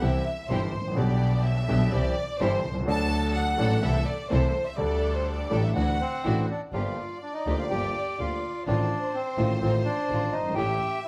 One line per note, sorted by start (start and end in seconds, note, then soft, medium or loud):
0.01 0.22 C2 medium
0.01 0.22 C3 medium
0.01 0.22 E3 medium
0.01 0.22 G3 medium
0.01 0.22 C4 medium
0.01 0.22 E4 medium
0.01 0.22 G4 medium
0.01 0.49 E5 medium
0.49 0.69 G1 medium
0.49 0.70 G1 medium
0.49 0.70 G2 medium
0.49 0.70 E3 medium
0.49 0.70 G3 medium
0.49 0.70 C4 medium
0.49 0.70 E4 medium
0.49 0.70 G4 medium
0.49 0.97 C5 medium
0.74 0.98 A1 medium
0.81 0.86 G#1 soft
0.87 0.92 A1 medium
0.91 0.97 A#1 medium
0.91 1.64 D3 medium
0.96 1.65 B1 medium
0.96 1.65 B2 medium
0.96 1.64 G3 medium
0.96 1.65 B3 medium
0.96 1.66 D4 medium
0.96 1.66 G4 medium
0.96 1.45 D5 medium
1.44 1.92 E5 medium
1.68 1.88 B1 medium
1.68 1.89 B1 loud
1.68 1.88 B2 medium
1.68 1.88 D3 medium
1.68 1.88 G3 medium
1.68 1.88 B3 medium
1.68 1.88 D4 medium
1.68 1.88 G4 medium
1.68 1.89 G4 medium
1.92 2.12 C2 medium
1.92 2.12 C3 medium
1.92 2.12 E3 medium
1.92 2.12 G3 medium
1.92 2.12 C4 medium
1.92 2.12 E4 medium
1.92 2.12 G4 medium
1.92 2.39 D5 medium
2.39 2.60 G1 medium
2.39 2.60 G2 medium
2.39 2.60 E3 medium
2.39 2.60 G3 medium
2.39 2.59 C4 medium
2.39 2.60 C4 medium
2.39 2.60 E4 medium
2.39 2.60 G4 medium
2.39 2.75 C5 medium
2.65 2.75 B1 medium
2.65 2.88 C2 medium
2.74 2.81 C2 medium
2.80 2.87 C#2 medium
2.86 3.55 D2 medium
2.86 3.56 D2 medium
2.86 3.55 D3 medium
2.86 3.54 F#3 medium
2.86 3.55 A3 medium
2.86 3.55 D4 medium
2.86 3.55 F#4 medium
2.86 3.55 A4 medium
2.86 3.56 A4 medium
2.86 3.33 A5 loud
3.36 3.83 F#5 loud
3.58 3.79 A1 medium
3.58 3.79 A1 loud
3.58 3.78 A2 medium
3.58 3.78 F#3 medium
3.58 3.79 A3 medium
3.58 3.79 D4 medium
3.58 3.79 F#4 medium
3.58 3.79 A4 medium
3.82 4.03 C2 medium
3.82 4.03 C3 medium
3.82 4.03 E3 medium
3.82 4.02 A3 medium
3.82 4.03 C4 medium
3.82 4.03 E4 medium
3.82 4.03 A4 medium
3.82 4.07 E5 loud
4.07 4.31 D5 medium
4.30 4.51 C2 medium
4.30 4.51 C3 medium
4.30 4.51 E3 medium
4.30 4.50 A3 medium
4.30 4.51 C4 medium
4.30 4.51 E4 medium
4.30 4.51 A4 medium
4.30 4.67 C5 medium
4.66 4.78 E5 medium
4.76 5.47 D2 medium
4.76 5.47 D3 medium
4.76 5.46 G3 medium
4.76 5.47 A3 medium
4.76 5.47 D4 medium
4.76 5.48 D4 medium
4.76 5.48 G4 medium
4.76 5.48 A4 medium
4.76 5.14 D5 medium
5.14 5.27 C5 medium
5.26 5.63 D5 medium
5.50 5.71 A1 medium
5.50 5.72 A1 medium
5.50 5.71 A2 medium
5.50 5.71 G3 medium
5.50 5.71 A3 medium
5.50 5.71 D4 medium
5.50 5.71 G4 medium
5.50 5.71 A4 medium
5.62 5.75 E5 medium
5.74 5.96 D2 medium
5.74 5.96 D3 medium
5.74 5.96 E3 medium
5.74 5.96 A3 medium
5.74 5.95 D4 medium
5.74 5.96 D4 medium
5.74 5.95 E4 medium
5.74 5.96 F#4 medium
5.74 6.45 F#5 medium
6.01 6.46 C4 medium
6.24 6.45 A1 medium
6.24 6.46 A1 medium
6.24 6.46 A2 medium
6.24 6.45 E3 medium
6.24 6.46 A3 medium
6.24 6.45 D4 medium
6.24 6.46 D4 medium
6.24 6.45 E4 medium
6.24 6.45 F#4 medium
6.24 6.46 F#4 medium
6.51 6.61 D4 medium
6.71 6.93 G1 medium
6.71 6.94 G1 medium
6.71 6.94 G2 medium
6.71 6.94 F3 medium
6.71 6.94 A#3 medium
6.71 6.94 D4 medium
6.71 7.18 F4 medium
6.71 6.94 F4 medium
6.71 6.94 G4 medium
6.71 8.61 D5 medium
7.23 7.34 D4 medium
7.34 7.56 D#4 medium
7.46 7.66 D2 medium
7.46 7.67 D2 medium
7.46 7.67 D3 medium
7.46 7.67 F3 medium
7.46 7.66 A#3 medium
7.46 7.67 A#3 soft
7.46 7.67 D4 medium
7.46 7.66 F4 medium
7.46 7.66 G4 medium
7.46 7.67 G4 medium
7.59 7.64 F4 medium
7.69 7.90 G1 medium
7.69 7.91 G1 medium
7.69 7.91 G2 medium
7.69 7.91 F3 medium
7.69 7.90 A#3 medium
7.69 7.91 A#3 soft
7.69 7.91 D4 soft
7.69 7.90 F4 medium
7.69 8.20 G4 medium
7.69 7.90 G4 medium
7.69 7.91 G4 medium
8.18 8.39 D2 soft
8.18 8.39 D3 soft
8.18 8.39 F3 soft
8.18 8.39 A#3 soft
8.18 8.39 D4 soft
8.18 8.39 F4 soft
8.18 8.64 F4 medium
8.18 8.39 G4 soft
8.66 8.87 A1 medium
8.66 8.87 A2 medium
8.66 8.87 D#3 medium
8.66 8.86 A3 medium
8.66 8.87 A3 medium
8.66 8.87 C4 medium
8.66 9.16 D4 medium
8.66 8.86 D#4 medium
8.66 8.87 F4 medium
8.66 10.57 C5 medium
9.14 9.59 C4 medium
9.37 9.58 A1 medium
9.37 9.58 A2 medium
9.37 9.58 D#3 medium
9.37 9.57 A3 medium
9.37 9.58 A3 medium
9.37 9.58 C4 medium
9.37 9.58 D#4 medium
9.37 9.57 F4 medium
9.37 9.58 F4 medium
9.60 9.82 A1 medium
9.60 9.82 A2 medium
9.60 9.82 D#3 medium
9.60 9.82 A3 medium
9.60 9.71 C4 medium
9.60 9.82 C4 medium
9.60 9.82 D#4 medium
9.60 9.82 F4 medium
9.85 10.34 D4 medium
10.09 10.29 A1 medium
10.09 10.29 A1 soft
10.09 10.30 A2 soft
10.09 10.30 D#3 soft
10.09 10.29 A3 soft
10.09 10.30 A3 soft
10.09 10.29 C4 soft
10.09 10.30 D#4 soft
10.09 10.30 F4 soft
10.32 10.57 G1 soft
10.32 10.55 D#4 medium
10.38 10.45 F#1 soft
10.45 10.51 G1 medium
10.50 10.56 G#1 medium
10.55 10.76 A1 medium
10.55 10.77 A1 medium
10.55 10.76 A2 medium
10.55 10.76 E3 medium
10.55 10.76 A3 medium
10.55 10.77 A3 medium
10.55 10.76 C#4 medium
10.55 10.77 C#4 medium
10.55 11.00 G4 medium
10.55 10.77 G4 medium
10.55 11.08 E5 medium